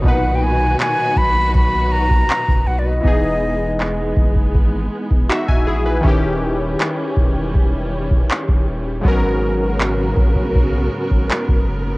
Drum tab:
CP |----x-------x---|----x-------x---|----x-------x---|----x-------x---|
BD |o-----o-o--o-o--|o-----ooo--o-o--|o-----o-o--o-o--|o-----ooo--o-o--|